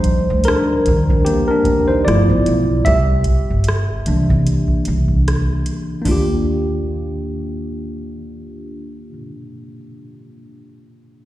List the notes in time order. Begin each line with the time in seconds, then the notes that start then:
Already playing: F3 G3 D4 D#4 C5
0.04 kick, closed hi-hat
0.30 D2
0.44 D4 A#4, closed hi-hat
0.48 cross-stick
0.86 D#2, kick, closed hi-hat
1.09 D#3, kick
1.25 A#3 G4, closed hi-hat
1.48 D4 A#4
1.64 D#2, kick, closed hi-hat
1.88 D#4 C5
2.05 G1 F3 A3 B3 E4 F4 D5, cross-stick, closed hi-hat
2.29 A1, kick
2.46 B1, closed hi-hat
2.85 C2 G4 E5, kick, closed hi-hat
3.24 kick, closed hi-hat
3.50 G1
3.64 closed hi-hat
3.69 cross-stick
4.06 C2 E3 A#3 D4, closed hi-hat
4.29 C3, kick
4.47 closed hi-hat
4.68 kick
4.85 C2, closed hi-hat
5.08 kick
5.28 cross-stick, closed hi-hat
5.66 closed hi-hat
6.02 A#3 D4, kick, floor tom, open hi-hat
6.06 D#2 F4
6.11 G4